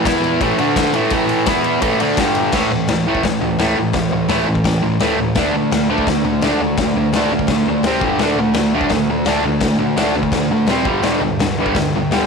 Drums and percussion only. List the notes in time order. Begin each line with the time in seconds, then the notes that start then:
0.05 kick, snare, ride
0.24 ride
0.41 kick, ride
0.58 ride
0.76 kick, snare, ride
0.94 ride
1.10 kick, ride
1.29 ride
1.46 kick, snare, ride
1.64 ride
1.82 kick, ride
2.00 ride
2.17 kick, snare, ride
2.35 ride
2.52 kick, snare, floor tom, crash
2.71 floor tom
2.88 snare, floor tom
3.06 floor tom
3.15 kick
3.23 kick, snare, floor tom
3.42 floor tom
3.59 snare, floor tom
3.77 floor tom
3.93 kick, snare, floor tom
4.11 floor tom
4.29 snare, floor tom
4.47 floor tom
4.55 kick
4.64 kick, snare, floor tom
4.82 floor tom
5.00 snare, floor tom
5.18 floor tom
5.35 kick, snare, floor tom
5.53 floor tom
5.72 snare, floor tom
5.89 floor tom
5.98 kick
6.07 kick, snare, floor tom
6.25 floor tom
6.42 snare, floor tom
6.60 floor tom
6.77 kick, snare, floor tom
6.95 floor tom
7.13 snare, floor tom
7.30 floor tom
7.39 kick
7.47 kick, snare, floor tom
7.66 floor tom
7.83 snare, floor tom
8.01 kick, floor tom
8.18 snare, floor tom
8.36 floor tom
8.54 snare, floor tom
8.72 floor tom
8.81 kick
8.89 kick, snare, floor tom
9.07 floor tom
9.25 snare, floor tom
9.43 floor tom
9.60 kick, snare, floor tom
9.79 floor tom
9.97 snare, floor tom
10.14 floor tom
10.23 kick
10.32 kick, snare, floor tom
10.49 floor tom
10.67 snare, floor tom
10.85 kick, floor tom
11.03 snare, floor tom
11.21 floor tom
11.39 snare, floor tom
11.57 floor tom
11.66 kick
11.75 kick, snare, floor tom
11.93 floor tom
12.11 snare, floor tom